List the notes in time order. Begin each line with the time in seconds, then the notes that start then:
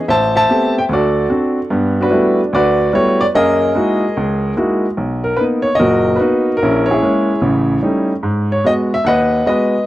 0.08 A1 C5 E5 A5
0.36 C5 E5 A5
0.49 A3 B3 C4 G4
0.78 G5
0.89 D2 F#4 A4
0.93 D5
1.30 C4 D4 F#4
1.70 G2 B3
2.01 D4 F#4 B4
2.11 G3 A3 B3 E4 F#4
2.53 D2 F#4 B4 D5
2.93 G3 A3 B3 E4 F#4 C#5
3.21 D5
3.35 F#2 A#3 G#4 A#4 D#5
3.75 G#3 A#3 D#4 E4 F#4
4.17 C#2
4.57 G#3 A#3 D#4 E4 F#4
4.97 B1
5.24 A#4
5.37 A#3 B3 D#4 B4
5.62 C#5
5.75 D#5
5.79 F#1 A#2 F#4 A#4
6.16 B4
6.20 A#3 B3 D#4 F#4
6.57 A#4
6.62 A#1 C#4 E4
6.86 C#5
6.91 E4 G#4
7.02 G#3 A#3 C#4
7.42 A1 C#3
7.83 G3 A3 C#4 D#4
8.23 G#2
8.52 C#5
8.64 G#3 B3 F#4 D#5
8.94 E5
9.04 D#2 B4 D#5 F#5
9.46 G#3 B3 F#4 B4 D#5